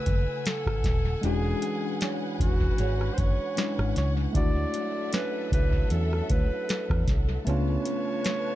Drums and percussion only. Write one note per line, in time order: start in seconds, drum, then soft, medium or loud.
0.06 kick loud
0.06 closed hi-hat medium
0.46 snare loud
0.46 closed hi-hat medium
0.66 kick loud
0.66 cross-stick loud
0.84 kick loud
0.84 snare medium
0.84 closed hi-hat medium
1.23 closed hi-hat medium
1.62 closed hi-hat medium
2.01 snare loud
2.01 closed hi-hat medium
2.40 kick loud
2.40 closed hi-hat medium
2.61 kick medium
2.78 closed hi-hat medium
3.01 cross-stick medium
3.18 kick loud
3.18 closed hi-hat medium
3.57 snare loud
3.57 closed hi-hat medium
3.79 cross-stick loud
3.96 snare medium
3.96 closed hi-hat medium
4.35 kick loud
4.35 closed hi-hat medium
4.74 closed hi-hat medium
5.13 snare loud
5.13 closed hi-hat medium
5.52 kick loud
5.52 closed hi-hat medium
5.73 kick medium
5.90 closed hi-hat medium
6.13 cross-stick medium
6.30 kick medium
6.30 closed hi-hat medium
6.69 snare loud
6.69 closed hi-hat medium
6.90 kick loud
6.90 cross-stick loud
7.07 kick loud
7.07 snare medium
7.07 closed hi-hat medium
7.47 closed hi-hat medium
7.85 closed hi-hat medium
8.25 snare loud
8.25 closed hi-hat medium